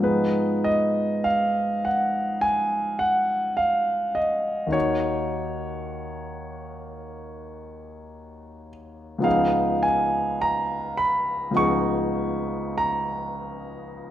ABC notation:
X:1
M:4/4
L:1/8
Q:1/4=52
K:G#dor
V:1 name="Grand piano"
B d e f g f e d | c6- c z | e g a b c'2 a2 |]
V:2 name="Grand piano"
[G,,E,B,DG]8 | [D,,D,A,DF]8 | [C,,E,B,DG]4 [C,,E,B,DG]4 |]